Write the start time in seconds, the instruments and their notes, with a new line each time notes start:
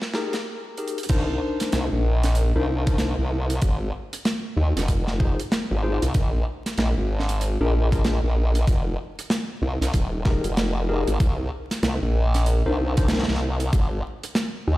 0.02 snare
0.14 tine electric piano D#4 G4 G#4 A#4, snare
0.33 snare, closed hi-hat
0.77 tine electric piano D#4 G4 G#4 A#4, closed hi-hat
0.88 closed hi-hat
0.98 closed hi-hat
1.03 closed hi-hat
1.09 wobble bass C2, tine electric piano D4 D#4 A#4 C5, kick, closed hi-hat, crash
1.60 snare, closed hi-hat
1.72 wobble bass C2, snare, closed hi-hat
1.93 wobble bass A#1
2.23 snare, closed hi-hat
2.35 closed hi-hat
2.56 wobble bass C2, tine electric piano D4 D#4 A#4 C5
2.87 tine electric piano D4 D#4 A#4 C5, kick, closed hi-hat
2.98 snare, closed hi-hat
3.19 wobble bass C2
3.50 closed hi-hat
3.62 wobble bass G#1, kick, closed hi-hat
4.13 closed hi-hat
4.25 snare, closed hi-hat
4.57 wobble bass D#2
4.76 wobble bass F1, snare, closed hi-hat
4.88 kick, closed hi-hat
5.07 snare
5.20 tine electric piano D#4 F4 G#4 C5, kick
5.40 closed hi-hat
5.52 snare, closed hi-hat
5.71 wobble bass G#1
5.83 tine electric piano D#4 F4 G#4 C5
6.02 wobble bass C2, closed hi-hat
6.14 wobble bass A#1, kick, closed hi-hat
6.66 snare, closed hi-hat
6.78 wobble bass A#1, snare, closed hi-hat
6.97 wobble bass G#1
7.20 snare
7.29 closed hi-hat
7.41 closed hi-hat
7.61 wobble bass A#1, tine electric piano D4 F4 G#4 A#4
7.92 tine electric piano D4 F4 G#4 A#4, kick, closed hi-hat
8.04 snare, closed hi-hat
8.23 wobble bass A#1
8.55 closed hi-hat
8.67 wobble bass F1, kick, closed hi-hat
9.19 closed hi-hat
9.30 snare, closed hi-hat
9.62 wobble bass C2
9.81 wobble bass C2, snare, closed hi-hat
9.94 wobble bass D#1, kick, closed hi-hat
10.25 tine electric piano D#4 G4 G#4 A#4, kick, snare
10.44 wobble bass F1, closed hi-hat
10.57 snare, closed hi-hat
10.89 tine electric piano D#4 G4 G#4 A#4
11.08 wobble bass G#1, closed hi-hat
11.20 wobble bass C2, kick, closed hi-hat
11.71 snare, closed hi-hat
11.83 wobble bass C2, snare, closed hi-hat
12.02 wobble bass A#1
12.34 snare, closed hi-hat
12.46 closed hi-hat
12.66 wobble bass C2, tine electric piano D4 D#4 A#4 C5
12.97 tine electric piano D4 D#4 A#4 C5, kick, closed hi-hat
13.08 snare, closed hi-hat
13.13 snare
13.18 snare
13.23 snare
13.28 wobble bass C2, snare
13.31 snare
13.34 snare
13.37 snare
13.60 closed hi-hat
13.73 wobble bass G#1, kick, closed hi-hat
14.23 closed hi-hat
14.35 snare, closed hi-hat
14.68 wobble bass D#2